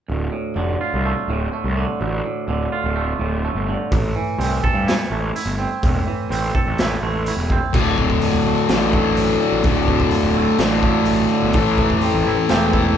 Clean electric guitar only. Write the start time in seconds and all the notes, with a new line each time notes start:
0.08 D2
0.32 A2
0.56 D3
0.81 F4
1.05 A3
1.30 A2
1.53 A3
1.77 D3
2.01 D2
2.25 A2
2.49 D3
2.72 F4
2.96 A3
3.19 A2
3.44 A3
3.69 D3
3.91 A2
4.16 E3
4.39 C4
4.64 A4
4.88 E4
5.11 A3
5.36 E4
5.59 C4
5.83 A2
6.07 E3
6.31 C4
6.55 A4
6.80 E4
7.04 A3
7.28 E4
7.51 C4
7.75 D2
8.00 A2
8.23 D3
8.47 A3
8.69 D3
8.93 A3
9.16 A2
9.40 D3
9.64 D2
9.88 A2
10.12 D3
10.35 A3
10.59 D3
10.82 A3
11.06 A2
11.31 D3
11.54 A2
11.79 A3
12.02 C4
12.27 E4
12.50 C4
12.73 E4